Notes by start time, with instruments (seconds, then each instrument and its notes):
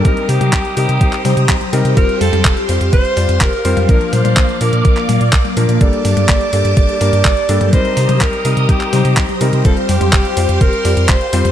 0.05 analog synth bass C2, electric grand piano G3 C4 D#4 A#4, string machine G4 C5 A#5 D#6, alto saxophone A#4, kick, closed hi-hat
0.17 closed hi-hat
0.29 analog synth bass C3, alto saxophone G4, open hi-hat
0.41 analog synth bass C3, closed hi-hat, high tom
0.53 analog synth bass C2, kick, clap, closed hi-hat
0.65 closed hi-hat
0.77 analog synth bass C3, electric grand piano G3 C4 D#4 A#4, alto saxophone G4, open hi-hat
0.89 analog synth bass C3, closed hi-hat
1.01 analog synth bass C2, kick, closed hi-hat
1.13 clap, closed hi-hat
1.25 analog synth bass C3, electric grand piano G3 C4 D#4 C5, open hi-hat, high tom
1.37 analog synth bass C3, closed hi-hat
1.49 analog synth bass C2, kick, clap, closed hi-hat
1.61 closed hi-hat, high tom
1.73 analog synth bass C3, electric grand piano G3 C4 D#4 A#4, open hi-hat
1.85 analog synth bass C3, closed hi-hat
1.97 analog synth bass F1, electric grand piano G3 C4 F4 C5, alto saxophone A#4, string machine C5 F5 C6, kick, closed hi-hat
2.09 closed hi-hat
2.21 analog synth bass F2, alto saxophone A4, open hi-hat, high tom
2.33 analog synth bass F2, closed hi-hat, high tom
2.45 analog synth bass F1, kick, clap, closed hi-hat
2.57 closed hi-hat
2.69 analog synth bass F2, electric grand piano G3 C4 F4 C5, open hi-hat
2.81 analog synth bass F2, closed hi-hat
2.93 analog synth bass F1, alto saxophone C5, kick, closed hi-hat
3.05 closed hi-hat
3.17 analog synth bass F2, electric grand piano G3 C4 F4 D5, open hi-hat
3.29 analog synth bass F2, closed hi-hat
3.41 analog synth bass F1, alto saxophone A#4, kick, clap, closed hi-hat
3.53 closed hi-hat
3.65 analog synth bass F2, electric grand piano G3 C4 F4 C5, open hi-hat
3.77 analog synth bass F2, closed hi-hat, high tom
3.89 analog synth bass A#1, electric grand piano F3 A#3 D4 A#4, string machine A#3 D5 D6, alto saxophone A#4, kick, closed hi-hat
4.01 closed hi-hat
4.13 analog synth bass A#2, alto saxophone C5, open hi-hat, high tom
4.25 analog synth bass A#2, closed hi-hat, high tom
4.37 analog synth bass A#1, kick, clap, closed hi-hat
4.49 closed hi-hat
4.61 analog synth bass A#2, electric grand piano F3 A#3 D4 A#4, alto saxophone A#4, open hi-hat
4.73 analog synth bass A#2, closed hi-hat
4.85 analog synth bass A#1, kick, closed hi-hat
4.97 clap, closed hi-hat
5.09 analog synth bass A#2, open hi-hat, high tom
5.21 analog synth bass A#2, closed hi-hat
5.33 analog synth bass A#1, kick, clap, closed hi-hat
5.45 closed hi-hat, high tom
5.57 analog synth bass A#2, electric grand piano F3 A#3 D4 A#4, open hi-hat
5.69 analog synth bass A#2, closed hi-hat
5.81 analog synth bass G1, electric grand piano G3 A#3 D4 A4, string machine G4 A5 D6, alto saxophone D5, kick, closed hi-hat
5.93 closed hi-hat
6.05 analog synth bass G2, open hi-hat, high tom
6.17 analog synth bass G2, closed hi-hat, high tom
6.29 analog synth bass G1, kick, clap, closed hi-hat
6.41 closed hi-hat
6.53 analog synth bass G2, electric grand piano G3 A#3 D4 A4, open hi-hat
6.65 analog synth bass G2, closed hi-hat
6.77 analog synth bass G1, alto saxophone D5, kick, closed hi-hat
6.89 closed hi-hat
7.01 analog synth bass G2, electric grand piano G3 A#3 D4 A#4, open hi-hat
7.13 analog synth bass G2, closed hi-hat
7.25 analog synth bass G1, kick, clap, closed hi-hat
7.37 closed hi-hat
7.49 analog synth bass G2, electric grand piano G3 A#3 D4 A4, open hi-hat
7.61 analog synth bass G2, closed hi-hat, high tom
7.73 analog synth bass C2, electric grand piano G3 C4 D#4 A#4, alto saxophone C5, string machine C5 A#5 D#6, kick, closed hi-hat
7.85 closed hi-hat
7.97 analog synth bass C3, open hi-hat
8.09 analog synth bass C3, closed hi-hat, high tom
8.21 analog synth bass C2, alto saxophone A#4, kick, clap, closed hi-hat
8.33 closed hi-hat
8.45 analog synth bass C3, electric grand piano G3 C4 D#4 A#4, open hi-hat
8.57 analog synth bass C3, closed hi-hat
8.69 analog synth bass C2, alto saxophone G4, kick, closed hi-hat
8.81 clap, closed hi-hat
8.93 analog synth bass C3, electric grand piano G3 C4 D#4 C5, open hi-hat, high tom
9.05 analog synth bass C3, closed hi-hat
9.17 analog synth bass C2, kick, clap, closed hi-hat
9.29 closed hi-hat, high tom
9.41 analog synth bass C3, electric grand piano G3 C4 D#4 A#4, open hi-hat
9.53 analog synth bass C3, closed hi-hat
9.65 analog synth bass F1, electric grand piano G3 C4 F4 C5, alto saxophone A4, string machine F5 C6, kick, closed hi-hat
9.77 closed hi-hat
9.89 analog synth bass F2, alto saxophone G4, open hi-hat, high tom
10.01 analog synth bass F2, closed hi-hat, high tom
10.13 analog synth bass F1, kick, clap, closed hi-hat
10.25 closed hi-hat
10.37 analog synth bass F2, electric grand piano G3 C4 F4 C5, open hi-hat
10.49 analog synth bass F2, closed hi-hat
10.61 analog synth bass F1, alto saxophone A#4, kick, closed hi-hat
10.73 closed hi-hat
10.85 analog synth bass F2, electric grand piano G3 C4 F4 D5, open hi-hat
10.97 analog synth bass F2, closed hi-hat
11.09 analog synth bass F1, alto saxophone C5, kick, clap, closed hi-hat
11.21 closed hi-hat
11.33 analog synth bass F2, electric grand piano G3 C4 F4 C5, open hi-hat
11.45 analog synth bass F2, closed hi-hat, high tom